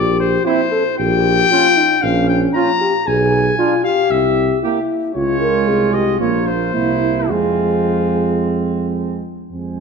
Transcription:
Already playing: tuba A#1, french horn G4, trumpet D5
0.20 trumpet C5
0.45 trombone C4, french horn E4, flugelhorn E4, trumpet C5
0.71 french horn A4
0.99 tuba A#1, french horn G4, trumpet G5
1.52 trombone C#4, french horn F4, flugelhorn F4
1.77 french horn D#4
2.03 tuba A#1, french horn C#4, trumpet F5
2.29 trumpet G5
2.54 trombone C#4, flugelhorn F4, french horn F4, trumpet A#5
2.81 french horn G4
3.07 tuba B1, french horn G#4, trumpet G#5
3.58 trombone D4, french horn F4, flugelhorn F4
3.84 french horn G4, trumpet F5
4.10 tuba C2, trumpet E5
4.62 trombone A#3, french horn E4, flugelhorn G4
5.14 tuba C#2, trombone G#3, flugelhorn F4, french horn F4, trumpet C#5
5.40 french horn A#4
5.67 tuba C2, french horn G#4
5.93 french horn G4, trumpet D#5
6.20 tuba A#1, trombone A#3, french horn F4, flugelhorn F4, trumpet C#5
6.47 trumpet C5
6.74 tuba C2, trombone A#3, french horn E4, flugelhorn E4
7.30 tuba F2, trombone G#3, flugelhorn C4, trumpet F4, french horn G#4
9.50 tuba F2, trombone G#3, french horn C4, flugelhorn G#4, trumpet C5

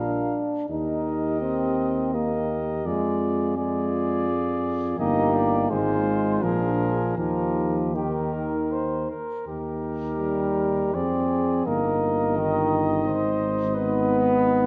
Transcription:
Already playing: tuba A#1, euphonium D4, french horn F4, flugelhorn A#4, trumpet F5
0.70 tuba D#2, euphonium D#4, french horn G4, flugelhorn A#4, trumpet D#5
1.42 euphonium C4
2.13 euphonium A#3, french horn G4, flugelhorn A#4, trumpet D#5
2.85 tuba F2, euphonium G#3, french horn F4, flugelhorn G#4, trumpet D5
3.57 euphonium G#3, french horn F4, flugelhorn G#4, trumpet D5
4.99 tuba G1, euphonium A#3, french horn D#4, flugelhorn G4, trumpet D#5
5.34 trumpet D5
5.70 tuba G#1, euphonium G#3, french horn D#4, flugelhorn F4, trumpet C5
6.43 tuba A#1, euphonium F3, french horn D4, flugelhorn G#4, trumpet A#4
7.17 tuba D#2, euphonium F3, french horn D#4, flugelhorn G4, trumpet A#4
7.94 euphonium D#3, french horn D#4, flugelhorn G4, trumpet A#4
8.33 flugelhorn A#4
8.72 flugelhorn C5
9.11 flugelhorn A#4
9.47 tuba D#2, french horn D#4, flugelhorn G4, trumpet A#4
10.19 euphonium G3
10.94 tuba F2, euphonium C4, flugelhorn G#4, french horn G#4, trumpet D5
11.66 tuba G1, euphonium A#3, french horn D#4, flugelhorn A#4, trumpet D#5
12.37 euphonium D#3
13.05 tuba G#1, flugelhorn C5
13.74 euphonium B3, flugelhorn B4

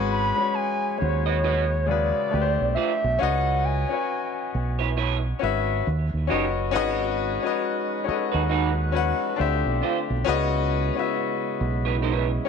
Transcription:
Already playing: fingered electric bass G#1, grand piano G#3 C#4 F#4 B4
0.12 soft synth lead B5
0.36 grand piano G#3 C#4 F#4
0.41 grand piano C#5
0.55 soft synth lead G#5
0.98 fingered electric bass D#2, grand piano G#3 C#4 F#4, soft synth lead C#5
1.03 grand piano C5
1.09 grand piano C#5
1.26 clean electric guitar F#4 B4 D#5
1.44 clean electric guitar F#4 B4 D#5
1.86 grand piano C#3 G#3 F#4, soft synth lead D5
1.91 grand piano B4
2.31 fingered electric bass D2, grand piano A3 D4 G4
2.35 grand piano B4
2.42 grand piano C5
2.61 fingered electric bass B1
2.75 clean electric guitar F4 C5 D5, soft synth lead E5
3.04 fingered electric bass B1
3.19 fingered electric bass C#2, grand piano C#4 F#4 B4, soft synth lead F#5
3.23 grand piano D#5
3.65 soft synth lead G#5
3.89 grand piano C#4 F#4 B4
3.93 grand piano C#5
4.55 fingered electric bass B1
4.79 clean electric guitar E4 B4 C#5
4.97 clean electric guitar E4 B4 C#5
5.39 fingered electric bass G#1, grand piano C#4 F#4 B4
5.44 grand piano E5
5.87 fingered electric bass D#2
6.14 fingered electric bass D#2
6.27 grand piano C#4 F#4 B4, clean electric guitar D#4 G4 C#5
6.31 fingered electric bass F#1, grand piano D#5
6.71 tonewheel organ G#3 D#4 F#4 B4, grand piano C#4 F#4 B4
6.76 fingered electric bass G#1, grand piano D#5
7.43 grand piano C#4 F#4 B4
7.47 grand piano D#5
8.04 grand piano C#4 F#4 A4
8.08 grand piano D#5, muted fingered electric bass stroke
8.14 grand piano B4
8.32 fingered electric bass D#2, clean electric guitar D#4 F#4 B4
8.49 clean electric guitar D#4 F#4 B4
8.92 grand piano C#4 F#4 B4
8.96 grand piano F#5
9.36 fingered electric bass D2, tonewheel organ D3 A3 C4 F4, grand piano D4 G4 C5
9.41 grand piano E5
9.66 fingered electric bass B1
9.82 clean electric guitar D4 F4 C5
10.10 fingered electric bass B1
10.25 fingered electric bass C#2, tonewheel organ C#3 G#3 B3 E4, grand piano C#4 F#4 B4
10.29 grand piano D#5
10.95 grand piano C#4 F#4 B4
10.99 grand piano E5
11.61 fingered electric bass B1
11.85 clean electric guitar E4 B4 C#5
12.02 clean electric guitar E4 B4 C#5
12.45 grand piano C#4

